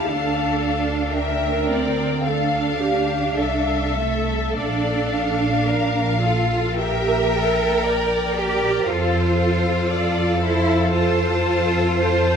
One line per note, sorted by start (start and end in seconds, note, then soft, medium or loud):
0.00 1.16 F5 soft
0.00 1.16 A5 soft
0.07 3.37 D2 soft
0.07 1.70 D4 medium
0.07 1.15 A4 soft
1.14 2.26 A#4 soft
1.14 1.69 E5 soft
1.14 2.23 G5 soft
1.69 2.26 C4 medium
1.69 2.25 D5 soft
2.25 3.97 D4 medium
2.25 2.80 A4 soft
2.25 3.34 F5 soft
2.25 3.35 F5 soft
2.81 3.37 G4 medium
3.37 4.56 C2 soft
3.37 5.65 A4 soft
3.37 4.58 E5 soft
3.37 3.96 F5 soft
3.97 4.57 A3 medium
3.97 4.58 E5 medium
4.57 8.87 A#1 medium
4.57 6.22 D4 medium
4.57 5.11 D5 soft
4.57 6.76 F5 soft
5.12 6.80 F5 soft
5.65 6.22 A#4 medium
6.21 6.80 F4 medium
6.21 6.79 A4 soft
6.80 7.34 G4 soft
6.80 8.37 A#4 medium
6.80 7.84 E5 medium
6.80 8.84 G5 medium
7.36 7.87 A4 medium
7.85 8.37 A#4 medium
7.85 8.88 D5 soft
8.38 8.88 G4 medium
8.38 8.87 A#4 medium
8.87 12.37 F2 medium
8.87 10.41 F4 medium
8.87 9.38 A4 medium
8.87 9.90 C5 medium
8.87 10.89 F5 medium
9.39 11.96 A4 medium
9.90 10.41 D5 medium
10.41 10.92 E4 medium
10.41 10.91 C5 medium
10.93 12.37 F4 medium
10.93 11.97 C5 medium
10.93 11.99 A5 medium
11.99 12.37 A4 medium
11.99 12.37 C5 medium
11.99 12.37 A5 medium